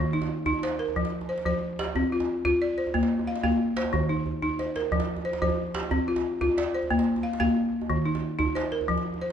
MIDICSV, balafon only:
0, 0, Header, 1, 2, 480
1, 0, Start_track
1, 0, Tempo, 330033
1, 1399, Time_signature, 12, 3, 24, 8
1, 13558, End_track
2, 0, Start_track
2, 0, Title_t, "Balafon"
2, 0, Program_c, 0, 12
2, 0, Note_on_c, 0, 51, 90
2, 194, Note_on_c, 0, 63, 68
2, 437, Note_off_c, 0, 51, 0
2, 652, Note_off_c, 0, 63, 0
2, 670, Note_on_c, 0, 63, 88
2, 919, Note_on_c, 0, 72, 67
2, 1153, Note_on_c, 0, 70, 67
2, 1154, Note_off_c, 0, 63, 0
2, 1400, Note_on_c, 0, 53, 85
2, 1635, Note_off_c, 0, 70, 0
2, 1638, Note_off_c, 0, 72, 0
2, 1876, Note_on_c, 0, 72, 69
2, 1879, Note_off_c, 0, 53, 0
2, 2106, Note_off_c, 0, 72, 0
2, 2121, Note_on_c, 0, 53, 81
2, 2123, Note_on_c, 0, 72, 69
2, 2599, Note_off_c, 0, 53, 0
2, 2606, Note_on_c, 0, 67, 73
2, 2840, Note_off_c, 0, 72, 0
2, 2846, Note_on_c, 0, 60, 82
2, 3088, Note_on_c, 0, 65, 67
2, 3321, Note_off_c, 0, 67, 0
2, 3322, Note_off_c, 0, 60, 0
2, 3547, Note_off_c, 0, 65, 0
2, 3565, Note_on_c, 0, 65, 90
2, 3805, Note_on_c, 0, 74, 67
2, 4040, Note_on_c, 0, 72, 67
2, 4041, Note_off_c, 0, 65, 0
2, 4277, Note_on_c, 0, 58, 81
2, 4519, Note_off_c, 0, 72, 0
2, 4521, Note_off_c, 0, 74, 0
2, 4757, Note_off_c, 0, 58, 0
2, 4762, Note_on_c, 0, 77, 69
2, 4979, Note_off_c, 0, 77, 0
2, 4996, Note_on_c, 0, 77, 67
2, 4998, Note_on_c, 0, 58, 78
2, 5478, Note_off_c, 0, 58, 0
2, 5480, Note_on_c, 0, 72, 72
2, 5713, Note_on_c, 0, 51, 86
2, 5717, Note_off_c, 0, 77, 0
2, 5954, Note_on_c, 0, 63, 62
2, 5959, Note_off_c, 0, 72, 0
2, 6195, Note_off_c, 0, 51, 0
2, 6418, Note_off_c, 0, 63, 0
2, 6435, Note_on_c, 0, 63, 80
2, 6681, Note_on_c, 0, 72, 63
2, 6917, Note_off_c, 0, 63, 0
2, 6922, Note_on_c, 0, 70, 69
2, 7155, Note_on_c, 0, 53, 83
2, 7400, Note_off_c, 0, 70, 0
2, 7400, Note_off_c, 0, 72, 0
2, 7635, Note_on_c, 0, 72, 67
2, 7637, Note_off_c, 0, 53, 0
2, 7863, Note_off_c, 0, 72, 0
2, 7881, Note_on_c, 0, 53, 79
2, 7881, Note_on_c, 0, 72, 75
2, 8358, Note_on_c, 0, 67, 67
2, 8360, Note_off_c, 0, 53, 0
2, 8598, Note_on_c, 0, 60, 82
2, 8600, Note_off_c, 0, 72, 0
2, 8842, Note_on_c, 0, 65, 69
2, 9078, Note_off_c, 0, 60, 0
2, 9079, Note_off_c, 0, 67, 0
2, 9308, Note_off_c, 0, 65, 0
2, 9326, Note_on_c, 0, 65, 86
2, 9564, Note_on_c, 0, 74, 64
2, 9802, Note_off_c, 0, 65, 0
2, 9810, Note_on_c, 0, 72, 65
2, 10043, Note_on_c, 0, 58, 83
2, 10282, Note_off_c, 0, 74, 0
2, 10284, Note_off_c, 0, 72, 0
2, 10519, Note_on_c, 0, 77, 67
2, 10521, Note_off_c, 0, 58, 0
2, 10746, Note_off_c, 0, 77, 0
2, 10761, Note_on_c, 0, 58, 88
2, 10764, Note_on_c, 0, 77, 74
2, 11240, Note_off_c, 0, 58, 0
2, 11482, Note_off_c, 0, 77, 0
2, 11483, Note_on_c, 0, 51, 87
2, 11715, Note_on_c, 0, 63, 65
2, 11962, Note_off_c, 0, 51, 0
2, 12180, Note_off_c, 0, 63, 0
2, 12197, Note_on_c, 0, 63, 81
2, 12440, Note_on_c, 0, 72, 67
2, 12679, Note_off_c, 0, 63, 0
2, 12681, Note_on_c, 0, 70, 67
2, 12918, Note_on_c, 0, 53, 85
2, 13161, Note_off_c, 0, 70, 0
2, 13161, Note_off_c, 0, 72, 0
2, 13400, Note_off_c, 0, 53, 0
2, 13402, Note_on_c, 0, 72, 65
2, 13558, Note_off_c, 0, 72, 0
2, 13558, End_track
0, 0, End_of_file